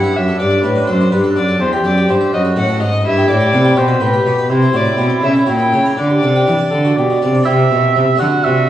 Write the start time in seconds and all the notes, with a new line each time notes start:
Already playing: G2 E4 F#5
0.04 E5
0.15 F#2 D4 E5
0.28 A4
0.40 G2 B4 D5
0.50 A4
0.63 A2 D4 B4
0.76 D5
0.87 F#2 A4 C5
1.01 D4
1.12 G2 B4 D5
1.24 A4
1.36 F#2 D4 D5
1.49 A4
1.59 E2 G4 C5
1.73 G4
1.84 F#2 A4 D5
1.98 G4
2.09 G2 E4 C5
2.21 E5
2.33 F#2 F#4 D#5
2.45 A4
2.56 A2 B4 F#5
2.69 A4
2.80 G#2 D#4 D#5
2.92 D#5
3.05 G2 E4 E5
3.17 G4
3.28 A2 A4 D5
3.41 G4
3.52 C3 B3
3.64 G5
3.76 B2 G4 C5
3.88 B4
4.00 A2 B4 G5
4.14 G4
4.26 B2 B3
4.38 B4
4.50 C3 E4 C5
4.62 E4
4.73 A2 F#4 D5
4.85 E4
4.98 B2 C4
5.10 C5
5.23 C#3 E5
5.36 E4
5.47 A#2 F#4 G5
5.59 E4
5.72 C#3 A#3
5.86 A#4
5.97 D3 D4 D5
6.10 G4
6.23 C3 A4
6.36 G4
6.47 E3 D4
6.59 D5
6.71 D3 A4
6.85 F#4
6.96 B2 G4 D5
7.10 F#4
7.22 C3 D4
7.35 D5
7.43 C4 E4 G4 E5
7.47 C3
7.71 B2
7.95 C3
8.16 A3 D4 F#4 F#5
8.20 D3 F#4
8.44 C3 E5